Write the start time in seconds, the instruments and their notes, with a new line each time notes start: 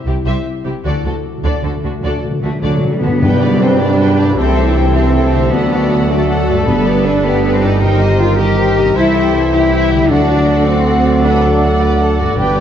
Already playing: harp C3 E4 G4, french horn section G3 E4
0.06 double bass section C2, cello section C3, harp C4, violin section E4 G4, viola section G4
0.25 double bass section C2, cello section C3, harp G4, viola section G4, violin section C5 E5
0.45 harp C4
0.65 double bass section C2, cello section C3, violin section E4 G4, harp E4, viola section G4
0.84 double bass section D2, harp D3, cello section D3, french horn section A3 F#4, viola section F#4, violin section A4 D5
0.92 timpani D3
1.00 timpani D3
1.04 double bass section D2, cello section D3, timpani D3, viola section F#4, harp F#4, violin section F#4 A4
1.15 timpani D3
1.22 timpani D3, harp D4
1.30 timpani D3
1.38 timpani D3
1.43 double bass section D2, cello section D3, timpani D3, viola section F#4, violin section A4 D5, harp A4
1.53 timpani D3
1.62 double bass section D2, timpani D3, cello section D3, harp D4, viola section F#4, violin section F#4 A4
1.70 timpani D3
1.77 timpani D3
1.83 double bass section D2, cello section D3, timpani D3, violin section D4 F#4, harp F#4, viola section F#4
1.93 timpani D3
2.01 double bass section D2, timpani D3, cello section D3, harp A3, viola section F#4, violin section A4 D5
2.09 timpani D3
2.16 timpani D3
2.23 timpani D3, harp F#4
2.31 timpani D3
2.40 double bass section D2, timpani D3, cello section D3 A3, french horn section A3, harp D4, viola section F#4
2.44 timpani D3, violin section D4 F#4
2.55 timpani D3
2.62 double bass section D2, cello section D3 F#3, timpani D3, french horn section F#3, viola section F#4, harp A4, violin section A4 D5
2.71 timpani D3
2.78 timpani D3
2.83 timpani D3, harp D4
2.92 timpani D3, french horn section G3, cello section G3
3.00 double bass section D2, timpani D3, cello section D3 B3, french horn section B3, violin section D4 F#4, viola section F#4, harp F#4
3.04 harp G2
3.09 timpani D3, harp B3
3.13 harp D4
3.18 trombone section G3 B3, viola section D4 B4, harp G4, clarinet G4, violin section G4
3.22 timpani G2, double bass section G2, cor anglais B4, flute D5, violin section G5, tam-tam
3.41 viola section G4 D5, violin section B4 D5
3.59 french horn section C4, cello section C4, viola section D4 B4, violin section A4 G5
3.78 french horn section D4, cello section D4, viola section G4 D5, violin section G4 D5
3.99 viola section D4 B4, violin section F#4 G5
4.17 harp C3, viola section G4 D5, violin section G4 D5
4.24 harp A3
4.29 harp E4
4.33 french horn section C4, viola section E4 A4, harp G4
4.37 double bass section C2, trombone section E3 A3, cello section C4, violin section A4 G5, cor anglais A4, flute E5
4.56 viola section G4 C5, violin section E5
4.76 viola section E4 A4, violin section G5
4.94 french horn section C4, cello section C4, viola section G4 C5, violin section G4 E5
5.13 viola section E4 A4, violin section A4 G5
5.32 harp D3, violin section E4 E5, viola section G4 C5
5.39 harp A3
5.43 harp D4
5.48 french horn section B3, harp F#4
5.52 double bass section D2, timpani D3, trombone section F#3, cello section B3, viola section D4 A4, violin section F#4 F#5, clarinet F#4, flute D5
5.71 viola section F#4, violin section G4 D5
5.90 viola section D4 A4, violin section F#4 F#5
6.09 cello section A3, french horn section A3, viola section F#4, violin section A4 D5
6.29 viola section D4 A4, violin section F#5
6.48 harp G2, viola section F#4, violin section D5
6.54 harp A3
6.58 harp D4
6.63 french horn section B3, harp G4
6.67 double bass section G1, timpani G2, trombone section D3, cello section B3, clarinet G4, viola section A4 B4, violin section B4
6.86 viola section G4 B4, violin section D5
7.05 cello section D4, french horn section D4, viola section A4 B4, violin section B4
7.24 cello section B3, french horn section B3, violin section G4 D5, viola section G4 B4
7.44 viola section A4 B4, violin section B4
7.54 cello section C4, french horn section C4
7.63 harp G2, cello section D#4, french horn section D#4, viola section G4 B4, violin section D5
7.68 harp A#3
7.73 harp D#4
7.77 harp G4, violin section C5
7.82 timpani G2, trombone section D#3 G3, viola section D#4 A#4, cor anglais A#4, flute D#5, violin section G5
8.01 viola section G4, violin section D#5
8.20 viola section D#4 A#4, french horn section F4, cello section F4, violin section G5
8.37 french horn section G4, viola section G4, cello section G4, violin section A#4 D#5
8.57 viola section D#4 A#4, violin section C5 G5
8.76 harp C3, viola section G4, violin section A#4 D#5
8.82 harp C4
8.87 harp E4
8.91 double bass section C2, trombone section E3, harp G4
8.96 viola section E4 C5, cello section E4, french horn section E4, violin section A4 E5, cor anglais C5, flute E5
9.14 viola section G4 E5, violin section G5
9.33 viola section E4 C5, violin section E5
9.53 cello section E4, french horn section E4, viola section G4 E5, violin section G4 G5
9.72 viola section E4 C5, violin section E5
9.90 harp D3, viola section G4 E5, violin section G5
9.96 harp A3
10.01 harp F#4
10.05 double bass section D2, harp D5
10.09 timpani D3, trombone section F#3 A3, french horn section D4, viola section D4 A4, cello section D4, violin section F#4 F#5, clarinet A4, cor anglais D5, flute F#5
10.29 viola section F#4, violin section D5
10.48 viola section D4 A4, violin section F#5
10.66 french horn section C4, cello section C4, viola section F#4, violin section D5
10.86 viola section D4 A4, violin section F#5
11.05 viola section F#4, violin section D5
11.24 viola section D4 A4, cello section D4, french horn section D4, violin section B4 F#5
11.42 viola section F#4, violin section A4 D5
11.61 viola section D4 A4, violin section F#4 F#5
11.80 viola section F#4, violin section B4 D5
11.99 viola section D4 A4, violin section A4 F#5
12.18 harp G2, viola section F#4, violin section F#4 D5
12.23 harp B3
12.28 harp G4
12.33 harp D5
12.37 double bass section G1, timpani G2, trombone section G3 B3, viola section D4 B4, violin section G4 G5, clarinet B4, flute G5
12.57 viola section G4 D5, violin section D5